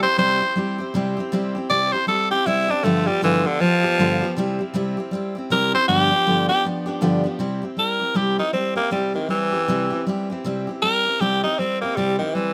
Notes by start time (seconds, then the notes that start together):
0.02 C4 E4 G4 C5
0.17 C3 G3 C4 E4 G4 C5
0.40 C4 E4 G4
0.56 G3 C4 E4 G4
0.78 C4 E4 G4
0.94 C3 G3 C4 E4 G4
1.17 C4 E4 G4
1.32 C3 G3 C4 E4 G4
1.55 C4 E4 G4
1.70 C3 G3 C4 E4 G4 D5
1.92 C4 E4 G4 C5
2.07 G3 C4 E4 G4 A4
2.30 C4 E4 G4
2.46 C3 G3 C4 E4 G4
2.68 C4 D4 E4 G4
2.83 G2 D3 F3 A3 B3 F4 G4
3.07 F3 G3 B3 F4 G4
3.22 G2 D3 E3 F3 B3 F4 G4
3.45 D3 F3 B3 F4 G4
3.61 F3 B3 F4 G4
3.84 F3 B3 F4 G4
3.98 G2 D3 F3 B3 F4 G4
4.21 F3 B3 F4 G4
4.37 C3 G3 C4 E4 G4
4.59 C4 E4 G4
4.74 C3 G3 C4 E4 G4
4.97 C4 E4 G4
5.11 G3 C4 E4 G4
5.35 C4 E4 G4
5.50 C3 G3 C4 E4 G4 A#4
5.73 C4 E4 G4 C5
5.88 G2 D3 F3 B3 D4 G4
6.10 F3 B3 D4 G4
6.26 G2 D3 F3 B3 D4 G4
6.48 F3 B3 D4 G4
6.64 F3 B3 D4 G4
6.86 F3 B3 D4 G4
7.01 G2 D3 F3 B3 D4 G4
7.24 F3 B3 D4 G4
7.39 C3 G3 C4 E4 G4
7.62 C4 E4 G4
7.77 G3 C4 E4 G4 A#4
8.00 C4 E4 G4
8.14 C3 G3 C4 E4 G4
8.37 C4 D#4 E4 G4
8.53 G3 C4 E4 G4
8.75 A#3 C4 E4 G4
8.91 C3 G3 C4 E4 G4
9.14 D#3 C4 E4 G4
9.29 E3 G3 C4 E4 G4
9.52 C4 E4 G4
9.68 C3 G3 C4 E4 G4
9.90 C4 E4 G4
10.07 G3 C4 E4 G4
10.30 C4 E4 G4
10.44 C3 G3 C4 E4 G4
10.67 C4 E4 G4
10.82 G3 C4 E4 G4 A#4
11.05 C4 E4 G4
11.20 C3 G3 C4 E4 G4
11.43 C4 D#4 E4 G4
11.59 G3 C4 E4 G4
11.81 A#3 C4 E4 G4
11.96 C3 G3 C4 E4 G4
12.18 D#3 C4 E4 G4
12.35 E3 G3 C4 E4 G4